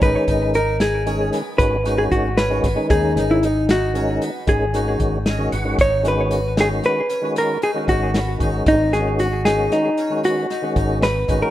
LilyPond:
<<
  \new Staff \with { instrumentName = "Hollow-body jazz guitar" } { \time 11/8 \key gis \minor \tempo 4 = 114 b'4 ais'8 gis'4 r8 b'8. gis'16 fis'8 b'4 | gis'8. e'16 dis'8 fis'4. gis'2 r8 | cis''8 b'4 gis'8 b'4 ais'8 gis'8 fis'4. | dis'8 gis'8 fis'8 gis'8 dis'4 fis'4. b'8. ais'16 | }
  \new Staff \with { instrumentName = "Harpsichord" } { \time 11/8 \key gis \minor dis'8 dis'8 dis'8 dis'8 cis'8 b4 dis'4 cis'8 b8 | dis'8 dis'8 dis'8 dis'8 cis'8 b4 dis'4 cis'8 b8 | dis'4 fis'8 dis'4 cis'8 b8 dis'8 dis'8 b8 dis'8 | dis'4 fis'8 dis'4 cis'8 b8 dis'8 dis'8 b8 dis'8 | }
  \new Staff \with { instrumentName = "Tonewheel organ" } { \time 11/8 \key gis \minor r1 r4. | r1 r8 dis''8 fis''8 | r1 r4. | r1 r4. | }
  \new Staff \with { instrumentName = "Tonewheel organ" } { \time 11/8 \key gis \minor <dis gis cis' dis'>4 r4 <dis gis cis' gis'>8. r16 <dis gis cis' fis'>16 r16 <dis gis cis' fis'>8. r8 <dis gis cis' fis'>16 r16 <dis gis cis' dis'>16~ | <dis gis cis' dis'>4 r4 <dis gis cis' dis'>8. r16 <dis gis cis' gis'>16 r16 <dis gis cis' fis'>8. r8 <dis gis cis' fis'>16 r16 <dis gis cis' fis'>16 | r8 <dis gis cis' fis'>8. r16 <dis gis cis' fis'>8. r8 <dis gis cis' fis'>8. r16 <dis gis cis' fis'>8. r8 <dis gis cis' fis'>8~ | <dis gis cis' fis'>16 r16 <dis gis cis' fis'>8. r16 <dis gis cis' fis'>8. r8 <dis gis cis' fis'>8. r16 <dis gis cis' fis'>8. r8 <dis gis cis' fis'>8 | }
  \new Staff \with { instrumentName = "Fretless electric bass" } { \clef bass \time 11/8 \key gis \minor gis,,16 r16 gis,,2 r8 gis,,4 gis,,4 gis,,16 r16 | dis,8 gis,,2 r8 gis,,4 gis,,4 gis,,8 | gis,,2 r2 gis,,4 gis,,8 | gis,,2 r2 gis,,4 gis,,16 r16 | }
  \new DrumStaff \with { instrumentName = "Drums" } \drummode { \time 11/8 <hh bd>8 <hh bd>8 hh8 <hh sn>8 hh8 <hh sn>8 <hh bd>8 <hh sn>8 <hh bd>8 <hh sn>8 <hh bd sn>8 | <hh bd>8 <hh sn>8 hh8 <hh sn>8 hh8 hh8 <hh bd>8 <hh sn>8 <hh bd>8 <hh sn>8 hh8 | <hh bd>8 <hh sn>8 hh8 <hh sn>8 <hh sn>8 hh8 hh8 hh8 <hh bd>8 <hh sn>8 <hh bd>8 | <hh bd>8 <hh sn>8 hh8 <hh sn>8 <hh sn>8 hh8 hh8 <hh sn>8 <hh bd>8 <hh sn>8 <hh bd>8 | }
>>